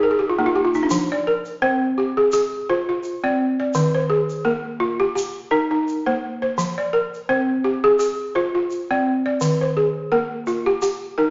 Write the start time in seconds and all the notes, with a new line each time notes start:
Already playing: D#4
0.03 A#4
0.11 G#4
0.19 G4
0.30 F4
0.39 A#3 D#4
0.46 F4
0.56 G4
0.65 F4
0.74 D#4, shaker
0.83 D4
0.90 F3, shaker
1.12 D5
1.27 A#4
1.45 shaker
1.62 C4 C5
1.98 G4
2.17 G#4
2.32 G#4, shaker
2.69 F4 C5
2.89 F4
3.03 shaker
3.24 C4 D5
3.60 D5
3.74 D#3, shaker
3.95 C5
4.10 G#4
4.30 shaker
4.45 A#3 A#4
4.80 F4
5.00 G4
5.15 G4, shaker
5.51 D#4 A#4
5.71 D#4
5.88 shaker
6.06 A#3 C5
6.42 C5
6.58 F3, shaker
6.78 D5
6.93 A#4
7.14 shaker
7.29 C4 C5
7.64 G4
7.84 G#4
7.99 G#4, shaker
8.35 F4 C5
8.55 F4
8.71 shaker
8.91 C4 D5
9.26 D5
9.41 D#3, shaker
9.61 C5
9.77 G#4
10.12 A#3 A#4
10.47 F4, shaker
10.66 G4
10.82 G4, shaker
11.18 D#4 A#4